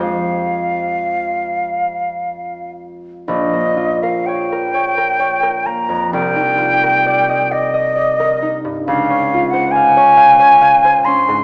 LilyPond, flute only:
\new Staff \with { instrumentName = "Flute" } { \time 6/8 \key f \minor \tempo 4. = 43 f''2~ f''8 r8 | \key bes \minor ees''8. f''16 g''4. bes''8 | g''4. ees''4. | f''8. ges''16 aes''4. c'''8 | }